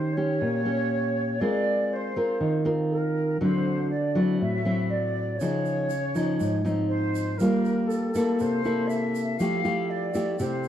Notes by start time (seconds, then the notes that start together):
Already playing: D#3 C#4 G4 C5
0.14 C#4 G4 C#5
0.41 A#2
0.65 C#4 G4
1.41 G#3 C4 F4 A#4 D5
1.93 C5
2.16 C4 F4 A#4
2.40 D#3
2.65 C4 F4 A#4
2.90 A#4
3.41 D3 F#3 C4 E4 C5
3.91 D5
4.15 F#3 C4 E4
4.41 A2 E5
4.65 F#3 C4 E4
4.91 D5
5.40 C#3 F3 D#4 C#5, shaker
5.65 shaker
5.90 shaker
6.15 F3 D#4, shaker
6.40 G#2, shaker
6.65 F3 C4 D#4, shaker
6.89 C5
7.15 shaker
7.38 G3 A#3 F4 A#4, shaker
7.65 shaker
7.88 A4, shaker
8.15 A#3 E4 A4, shaker
8.39 C3 C5, shaker
8.64 A#3 E4 A4, shaker
8.86 E5, shaker
9.15 shaker
9.38 F3 A3 E4 G4 F5, shaker
9.64 A3 E4 G4, shaker
9.90 D5
10.14 A3 E4 G4, shaker
10.39 C3 A3 E4 G4 C5, shaker
10.63 shaker